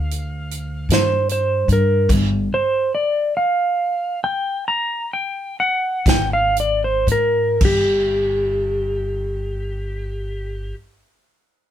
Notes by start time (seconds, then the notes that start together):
Already playing: D2 F5
0.11 closed hi-hat
0.51 closed hi-hat
0.89 G2, snare, closed hi-hat
0.94 C5
1.29 C5, closed hi-hat
1.68 G2, closed hi-hat
1.73 A#4
2.09 G1, kick, closed hi-hat, crash
2.54 C5
2.95 D5
3.37 F5
4.24 G5
4.68 A#5
5.13 G5
5.60 F#5
6.06 G#1 G5, kick, snare, closed hi-hat
6.33 F5
6.57 D5, closed hi-hat
6.84 C5
7.07 G#2, closed hi-hat
7.12 A#4
7.61 G1, kick, crash
7.65 G4